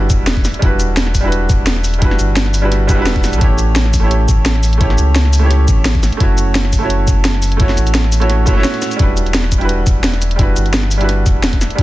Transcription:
Already playing: G3 D4 E4 F#4 B4
0.10 E1, kick, closed hi-hat, cabasa
0.27 snare, closed hi-hat
0.37 kick
0.45 snare, open hi-hat, cabasa
0.54 closed hi-hat
0.59 E1 G3 D4 E4, kick, closed hi-hat
0.64 F#4 B4
0.80 closed hi-hat, cabasa
0.97 snare, closed hi-hat
1.07 snare
1.15 kick, open hi-hat, cabasa
1.21 G3 D4 E4
1.25 F#4 B4
1.32 closed hi-hat
1.50 E1, kick, closed hi-hat, cabasa
1.67 snare, closed hi-hat
1.76 snare
1.84 open hi-hat, cabasa
1.94 closed hi-hat
1.99 G3 D4 E4, kick, closed hi-hat
2.04 F#4 B4
2.11 snare
2.19 G1, closed hi-hat, cabasa
2.37 snare, closed hi-hat
2.46 snare
2.54 open hi-hat, cabasa
2.62 G3 D4 E4 F#4 B4
2.72 snare, closed hi-hat
2.87 E1 G3 D4 E4 F#4 B4, kick, closed hi-hat, cabasa
2.95 G3 D4 E4
3.00 F#4 B4
3.07 snare, closed hi-hat
3.16 kick, closed hi-hat
3.24 snare, open hi-hat, cabasa
3.33 B1, closed hi-hat, cabasa
3.38 A1 A3 C#4 E4, kick, closed hi-hat
3.43 G4 C#5
3.59 closed hi-hat, cabasa
3.76 snare, closed hi-hat
3.85 snare
3.94 kick, open hi-hat, cabasa
4.00 A3 C#4 E4
4.05 G4 C#5
4.11 closed hi-hat
4.29 A1, kick, closed hi-hat, cabasa
4.46 snare, closed hi-hat
4.55 snare
4.63 open hi-hat, cabasa
4.73 closed hi-hat
4.78 A3 C#4 E4, kick, closed hi-hat
4.83 G4 C#5
4.90 snare
4.98 C#2, closed hi-hat, cabasa
5.16 snare, closed hi-hat
5.25 snare
5.33 open hi-hat, cabasa
5.39 A3 C#4 E4
5.44 G4 C#5
5.51 snare, closed hi-hat
5.68 A1, kick, closed hi-hat, cabasa
5.85 snare, closed hi-hat
5.95 kick
6.03 snare, open hi-hat, cabasa
6.12 closed hi-hat
6.17 F#1 A3 C#4 E4, kick, closed hi-hat
6.22 F#4 C#5
6.38 closed hi-hat, cabasa
6.55 snare, closed hi-hat
6.65 snare
6.73 kick, open hi-hat, cabasa
6.79 A3 C#4 E4
6.84 F#4 C#5
6.90 closed hi-hat
7.08 F#1, kick, closed hi-hat, cabasa
7.25 snare, closed hi-hat
7.34 snare
7.42 open hi-hat, cabasa
7.52 closed hi-hat
7.57 A3 C#4 E4, kick, closed hi-hat
7.62 F#4 C#5
7.69 snare
7.77 A1, closed hi-hat, cabasa
7.87 closed hi-hat, cabasa
7.95 snare, closed hi-hat
8.04 snare
8.12 open hi-hat, cabasa
8.20 A3 C#4 E4 F#4 C#5, closed hi-hat
8.30 snare, closed hi-hat
8.46 F#1 A3 C#4 E4 F#4 C#5, kick, closed hi-hat, cabasa
8.53 A3 C#4 E4
8.58 F#4 C#5
8.64 snare, closed hi-hat, cabasa
8.74 closed hi-hat
8.82 snare, open hi-hat, cabasa
8.91 closed hi-hat, cabasa
8.96 E1 G3 D4 E4, kick, closed hi-hat
9.01 F#4 B4
9.17 closed hi-hat, cabasa
9.26 closed hi-hat
9.34 snare, closed hi-hat
9.44 snare
9.52 kick, closed hi-hat, cabasa
9.58 G3 D4 E4, closed hi-hat
9.63 F#4 B4
9.69 closed hi-hat
9.87 E1, kick, closed hi-hat, cabasa
10.04 snare, closed hi-hat
10.14 snare, closed hi-hat
10.22 closed hi-hat, cabasa
10.31 closed hi-hat
10.36 G3 D4 E4, kick, closed hi-hat
10.41 F#4 B4
10.56 G1, closed hi-hat, cabasa
10.66 closed hi-hat
10.74 snare, closed hi-hat
10.83 snare
10.91 open hi-hat, cabasa
10.97 G3 D4 E4, closed hi-hat
11.03 F#4 B4
11.09 snare, closed hi-hat
11.26 E1, kick, closed hi-hat, cabasa
11.44 snare, closed hi-hat
11.53 kick, closed hi-hat
11.61 snare, closed hi-hat, cabasa
11.70 closed hi-hat
11.75 E1 G3 D4 E4, kick, closed hi-hat

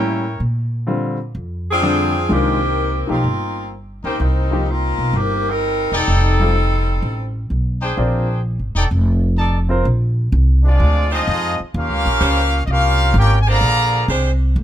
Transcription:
Already playing: A2 G3 A#3 C#4 E4 A#4 C#5 G5
0.40 A#2
0.87 D3 G3 C4 F4
1.35 F2
1.71 F3 C4 D4 G#4
1.82 D3 G3 C4 D4 G#4 C5 G5
2.28 C2 D#3 G#3 D4 F4
2.33 D#3 A#3 C4 G4
3.07 B1 F3 A#3 C4 D#4 G4
3.12 A#3 D#4 F4
3.24 G1
4.03 C#2 D#3 A#3 C4 D#4 G4 A#4 C5 G5
4.20 C2 G3 A#3 C4 D#4
4.51 F3 A#3 D#4 G4
4.71 A#3 C4 D#4 F4
4.98 B1
5.13 G1 D#3 A#3 C4 G4
5.49 G3 C4 D#4 A#4
5.92 E1 D#4 A4 D5 G5
5.97 G3 C4 D#4 A4
6.08 F1
6.40 G3 C4 F4 A4
7.02 A1
7.50 B1
7.81 D4 G#4 C5 G5
7.97 A#1 C4 F4 A#4 D5
8.59 G#1
8.75 E1 D#4 A4 D5 G5
8.91 F1
9.38 D#4 A4 D5 A5
9.69 C4 F4 A#4 C5
9.85 A#1
10.32 C2
10.63 F3 G#3 C4 D4
10.67 F4 G#4 D5
10.80 D2
11.10 F3 G#3 C4 D4 D#4 F4 G4 C5 D#5
11.15 G#4
11.27 F2
11.60 muted upright bass stroke
11.74 D#2 A#3 C#4 F4 G4 A#4 F5
11.89 C#2
12.05 A#1
12.20 C#2 G3 C#4 F4 C5
12.66 C2 D#5
12.70 A#3 C#4 F4 G4 A#4 F5
13.14 G#1
13.18 A#3 C#4 F4 G4 A#4 C#5 G5
13.41 G#5
13.47 D3 F3 G#3 A#3 D4 G4 G#4 C5 D5 F5 A#5
13.61 A#1
14.08 C2 G#3 D4 G4 C5
14.56 D2

